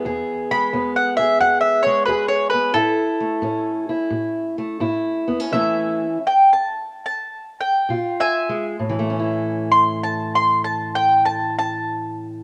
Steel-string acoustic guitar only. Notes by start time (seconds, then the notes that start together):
Already playing: E3 B3
0.05 E2 G#4
0.51 G#3
0.73 E2 B3
1.19 G#4
1.40 E2
1.86 G#3
2.08 E2 G#4
2.54 B3
2.74 A2 E4
3.20 A3
3.42 A2 C#4
3.89 E4
4.10 A2
4.58 A3
4.80 A2 E4
5.28 B3
5.40 C#4
5.52 A2 E3 A3 C#4 E4
7.89 A#2 F4
8.49 G#3
8.79 A2
8.89 E3
8.99 A3
9.10 C#4
9.19 E4